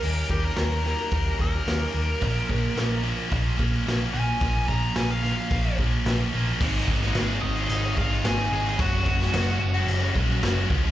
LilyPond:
<<
  \new Staff \with { instrumentName = "Lead electric guitar" } { \time 4/4 \key bes \dorian \tempo 4 = 110 bes'8 g'16 bes'4.~ bes'16 bes'4.~ | bes'4. r2 aes''8~ | aes''8 bes''8 aes''16 f''16 f''4 r4. | \key aes \mixolydian r4. <ees' ees''>4 <f' f''>8 <aes' aes''>8 <aes' aes''>8 |
<ges' ges''>2 r2 | }
  \new Staff \with { instrumentName = "Steel-string acoustic guitar" } { \time 4/4 \key bes \dorian <ees bes des' g' bes'>8 <bes des' g' bes'>16 <des' g' bes'>16 <ees bes des' g' bes'>8 <bes des' g' bes'>16 <des' g' bes'>8 <des' g' bes'>16 <bes des' g' bes'>16 <des' g' bes'>16 <ees bes des' g' bes'>16 <des' g' bes'>16 <bes des' g' bes'>8 | r1 | r1 | \key aes \mixolydian r1 |
r1 | }
  \new Staff \with { instrumentName = "Distorted electric guitar" } { \time 4/4 \key bes \dorian <ees g bes ees'>8 <ees g bes ees'>8 <ees g bes ees'>8 <ees g bes ees'>8 <ees g bes ees'>8 <ees g bes ees'>8 <ees g bes ees'>8 <ees g bes ees'>8 | <bes, f bes des'>8 <bes, f bes des'>8 <bes, f bes des'>8 <bes, f bes des'>8 <bes, f bes des'>8 <bes, f bes des'>8 <bes, f bes des'>8 <bes, f bes des'>8 | <bes, f bes des'>8 <bes, f bes des'>8 <bes, f bes des'>8 <bes, f bes des'>8 <bes, f bes des'>8 <bes, f bes des'>8 <bes, f bes des'>8 <bes, f bes des'>8 | \key aes \mixolydian <aes, ees aes c' ees' aes'>8. <aes c' ees' aes'>16 <aes, ees aes c' ees' aes'>16 <aes c' ees' aes'>8 <aes c' ees' aes'>8 <aes c' ees' aes'>16 <aes c' ees' aes'>8 <aes, ees aes c' ees' aes'>16 <aes c' ees' aes'>16 <aes c' ees' aes'>16 <aes c' ees' aes'>16 |
<ges aes des' ges'>8. <aes des' ges'>16 <ges aes des' ges'>16 <aes des' ges'>8 <aes des' ges'>8 <aes des' ges'>16 <ges aes des' ges'>8 <ges aes des' ges'>16 <aes des' ges'>16 <des f aes des' f'>16 <aes des' f'>16 | }
  \new Staff \with { instrumentName = "Overdriven electric guitar" } { \clef bass \time 4/4 \key bes \dorian r1 | <bes, f bes>8 <bes, f bes>8 <bes, f bes>8 <bes, f bes>8 <bes, f bes>8 <bes, f bes>8 <bes, f bes>8 <bes, f bes>8 | <bes, f bes>8 <bes, f bes>8 <bes, f bes>8 <bes, f bes>8 <bes, f bes>8 <bes, f bes>8 <bes, f bes>8 <bes, f bes>8 | \key aes \mixolydian <aes, ees aes c' ees'>16 <aes c' ees'>16 <ees aes c' ees'>16 <aes c' ees'>16 <aes, ees aes c' ees'>8 <ees aes c' ees'>16 <aes c' ees'>8. <ees aes c' ees'>16 <aes c' ees'>16 <aes, ees aes c' ees'>8 <ees aes c' ees'>16 <aes c' ees'>16 |
<ges aes des' ges'>16 <aes des' ges'>16 <ges aes des' ges'>16 <aes des' ges'>16 <ges aes des' ges'>8 <ges aes des' ges'>16 <aes des' ges'>8. <ges aes des' ges'>16 <aes des' ges'>16 <ges aes des' ges'>8 <des f aes des' f'>16 <aes des' f'>16 | }
  \new Staff \with { instrumentName = "Picked electric bass" } { \clef bass \time 4/4 \key bes \dorian ees,8 ees,8 ees,4 ees,8 ees,8 ees,8 ees,8 | bes,,8 bes,,8 bes,,4 bes,,8 bes,,8 bes,,8 bes,,8 | bes,,8 bes,,8 bes,,4 bes,,8 bes,,8 bes,,8 bes,,8 | \key aes \mixolydian aes,,8 aes,,8 aes,,8 aes,,8 aes,,8 aes,,8 aes,,8 aes,,8 |
ges,,8 ges,,8 ges,,8 ges,,8 ges,,8 bes,,8 ges,,8 des,8 | }
  \new DrumStaff \with { instrumentName = "Drums" } \drummode { \time 4/4 hho8 bd8 <hho sn>8 sn8 <hho bd>8 bd8 <hho sn>4 | <hho bd>8 bd8 <hho sn>4 <hho bd>8 bd8 <hho sn>4 | <hho bd>8 bd8 <hho sn>8 sn8 <hho bd>8 bd8 <hho sn>4 | <cymc bd>8 bd16 sn16 <cymc sn>4 cymc8 bd8 <cymc sn>4 |
<cymc bd>8 bd16 sn16 <cymc sn>4 cymc8 bd8 <cymc sn>8 bd8 | }
>>